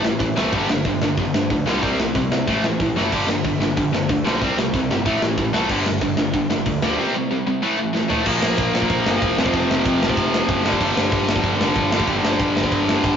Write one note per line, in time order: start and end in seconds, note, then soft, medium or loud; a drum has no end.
0.03 0.18 A1 loud
0.03 0.18 A2 medium
0.03 0.19 E3 medium
0.03 snare loud
0.19 0.34 A1 medium
0.19 0.35 A2 medium
0.19 0.35 E3 medium
0.19 kick loud
0.19 open hi-hat medium
0.36 0.50 C2 medium
0.36 0.52 A2 medium
0.36 0.52 E3 loud
0.36 0.52 A3 medium
0.36 snare loud
0.52 0.66 G1 loud
0.52 0.68 G2 medium
0.52 0.69 D3 loud
0.52 0.69 G3 loud
0.52 kick loud
0.52 crash loud
0.68 0.83 G1 medium
0.68 0.84 G2 medium
0.68 0.84 D3 medium
0.68 snare loud
0.85 0.99 G1 medium
0.85 1.01 G2 medium
0.85 1.01 D3 medium
0.85 kick loud
0.85 open hi-hat medium
1.01 1.15 G1 medium
1.01 1.17 G2 medium
1.01 1.17 D3 medium
1.01 snare loud
1.17 1.31 G1 medium
1.17 1.33 G2 medium
1.17 1.33 D3 medium
1.17 kick loud
1.17 open hi-hat medium
1.33 1.47 G1 medium
1.33 1.49 G2 medium
1.33 1.49 D3 medium
1.33 snare loud
1.50 1.64 D2 medium
1.50 1.65 G2 medium
1.50 1.65 D3 medium
1.50 kick loud
1.50 open hi-hat medium
1.66 1.80 C2 medium
1.66 1.82 G2 medium
1.66 1.82 D3 medium
1.66 1.82 G3 medium
1.66 snare loud
1.83 1.96 C2 medium
1.83 1.98 C3 medium
1.83 1.98 G3 loud
1.83 1.98 C4 loud
1.83 kick loud
1.83 open hi-hat medium
1.98 2.12 C2 medium
1.98 2.13 C3 medium
1.98 2.14 G3 medium
1.98 snare loud
2.15 2.29 C2 medium
2.15 2.30 C3 medium
2.15 2.30 G3 medium
2.15 kick loud
2.15 open hi-hat medium
2.31 2.45 C2 medium
2.31 2.46 C3 medium
2.31 2.46 G3 medium
2.31 snare loud
2.48 2.61 A1 medium
2.48 2.63 A2 loud
2.48 2.63 E3 medium
2.48 2.63 A3 medium
2.48 kick loud
2.48 open hi-hat medium
2.63 2.77 A1 medium
2.63 2.79 A2 medium
2.63 2.79 E3 medium
2.63 snare medium
2.80 2.94 A1 medium
2.80 2.95 A2 medium
2.80 2.95 E3 medium
2.80 kick loud
2.80 open hi-hat medium
2.95 3.09 F#1 medium
2.95 3.11 A2 medium
2.95 3.12 E3 loud
2.95 3.12 A3 medium
2.95 snare medium
3.12 3.26 G1 medium
3.12 3.27 G2 medium
3.12 3.28 D3 medium
3.12 3.28 G3 loud
3.12 kick loud
3.12 splash medium
3.12 crash loud
3.27 3.41 G1 medium
3.27 3.43 G2 medium
3.27 3.43 D3 medium
3.27 snare loud
3.44 3.58 G1 medium
3.44 3.59 G2 medium
3.44 3.59 D3 medium
3.44 kick loud
3.44 open hi-hat medium
3.59 3.73 G1 medium
3.59 3.75 G2 medium
3.59 3.75 D3 medium
3.59 snare medium
3.77 3.91 G1 medium
3.77 3.91 G2 medium
3.77 3.91 D3 medium
3.77 kick loud
3.77 open hi-hat medium
3.92 4.06 G1 medium
3.92 4.07 G2 medium
3.92 4.08 D3 medium
3.92 snare loud
4.09 4.23 D2 medium
4.09 4.23 G2 medium
4.09 4.23 D3 medium
4.09 kick loud
4.09 open hi-hat medium
4.24 4.39 B1 medium
4.24 4.40 G2 medium
4.24 4.40 D3 loud
4.24 4.41 G3 medium
4.24 snare loud
4.41 4.55 C2 loud
4.41 4.57 C3 medium
4.41 4.57 G3 medium
4.41 4.57 C4 loud
4.41 kick loud
4.41 open hi-hat medium
4.58 4.71 C2 medium
4.58 4.72 C3 medium
4.58 4.73 G3 medium
4.58 snare loud
4.73 4.87 C2 medium
4.73 4.89 C3 medium
4.73 4.89 G3 medium
4.73 kick loud
4.73 open hi-hat medium
4.90 5.04 G1 medium
4.90 5.05 C3 medium
4.90 5.05 G3 medium
4.90 snare loud
5.05 5.19 A1 loud
5.05 5.21 A2 medium
5.05 5.21 E3 loud
5.05 5.21 A3 loud
5.05 kick loud
5.05 open hi-hat medium
5.22 5.36 A1 medium
5.22 5.36 A2 medium
5.22 5.37 E3 medium
5.22 snare medium
5.38 5.51 A1 loud
5.38 5.52 A2 medium
5.38 5.52 E3 medium
5.38 kick loud
5.38 open hi-hat medium
5.53 5.68 C2 medium
5.53 5.69 A2 medium
5.53 5.69 E3 medium
5.53 5.69 A3 loud
5.53 snare loud
5.69 5.84 G1 loud
5.69 5.85 G2 loud
5.69 5.85 D3 loud
5.69 5.86 G3 medium
5.69 kick loud
5.69 crash loud
5.86 6.00 G1 medium
5.86 6.01 G2 medium
5.86 6.01 D3 medium
5.86 snare loud
6.01 6.15 G1 medium
6.01 6.16 G2 medium
6.01 6.17 D3 medium
6.01 kick loud
6.01 open hi-hat medium
6.17 6.31 G1 medium
6.17 6.32 G2 medium
6.17 6.33 D3 medium
6.17 snare loud
6.34 6.47 G1 loud
6.34 6.49 G2 medium
6.34 6.49 D3 medium
6.34 kick loud
6.34 open hi-hat medium
6.50 6.64 G1 medium
6.50 6.65 G2 medium
6.50 6.65 D3 medium
6.50 snare loud
6.66 6.80 D2 medium
6.66 6.81 G2 medium
6.66 6.81 D3 medium
6.66 kick loud
6.66 open hi-hat medium
6.82 6.96 D2 medium
6.82 6.98 G2 medium
6.82 6.98 D3 medium
6.82 6.98 G3 loud
6.82 snare loud
6.99 7.14 C3 loud
6.99 7.14 G3 loud
6.99 7.14 C4 loud
7.15 7.29 C3 medium
7.15 7.29 G3 medium
7.31 7.45 C3 medium
7.31 7.45 G3 medium
7.47 7.61 C3 medium
7.47 7.61 G3 medium
7.62 7.77 A2 medium
7.62 7.77 E3 loud
7.62 7.78 A3 loud
7.78 7.92 A2 medium
7.78 7.92 E3 medium
7.93 8.07 A2 medium
7.93 8.08 E3 medium
7.93 snare medium
8.09 8.25 A2 medium
8.09 8.25 E3 medium
8.09 8.25 A3 medium
8.09 floor tom medium
8.25 8.38 A#1 medium
8.25 9.36 A#2 medium
8.25 9.37 F3 medium
8.25 9.38 A#3 loud
8.25 kick loud
8.25 crash loud
8.42 8.55 A#1 medium
8.42 snare loud
8.58 8.70 A#1 medium
8.58 kick loud
8.58 ride medium
8.74 8.86 A#1 medium
8.74 snare loud
8.82 kick medium
8.90 9.02 A#1 loud
8.90 kick loud
8.90 ride medium
9.06 9.18 G1 loud
9.06 snare loud
9.22 9.34 E1 loud
9.22 kick loud
9.22 ride medium
9.38 9.50 F1 medium
9.38 10.64 F2 loud
9.38 10.65 C3 loud
9.38 10.66 F3 loud
9.38 snare loud
9.46 kick medium
9.53 9.65 F1 loud
9.53 kick loud
9.53 ride medium
9.70 9.82 F1 medium
9.70 snare loud
9.85 9.97 F2 loud
9.85 kick loud
9.85 ride medium
10.02 10.13 F1 medium
10.02 snare loud
10.09 kick medium
10.17 10.41 F1 loud
10.17 kick loud
10.17 ride medium
10.34 snare loud
10.48 10.60 F#1 loud
10.48 kick loud
10.48 ride medium
10.64 10.77 G1 medium
10.64 11.90 G2 medium
10.64 11.92 D3 loud
10.64 11.92 G3 loud
10.64 snare loud
10.73 kick medium
10.80 10.93 G1 loud
10.80 kick medium
10.80 crash loud
10.97 11.09 G1 loud
10.97 snare loud
11.12 11.24 G1 loud
11.12 kick loud
11.12 ride medium
11.28 11.40 G1 medium
11.28 snare loud
11.36 kick medium
11.44 11.56 G1 medium
11.44 kick loud
11.44 ride medium
11.60 11.72 F1 loud
11.60 snare loud
11.76 12.00 G1 loud
11.76 kick loud
11.76 ride medium
11.92 13.17 G2 medium
11.92 13.17 D3 loud
11.92 13.17 G3 loud
11.92 snare loud
12.00 kick medium
12.07 12.20 G1 loud
12.07 kick loud
12.07 ride medium
12.23 12.36 G1 medium
12.23 snare loud
12.39 12.52 G2 medium
12.39 kick loud
12.39 ride medium
12.57 12.68 G1 medium
12.57 snare loud
12.64 kick medium
12.71 12.95 G1 medium
12.71 kick loud
12.71 ride medium
12.89 snare loud
13.03 13.15 G1 loud
13.03 kick loud
13.03 ride medium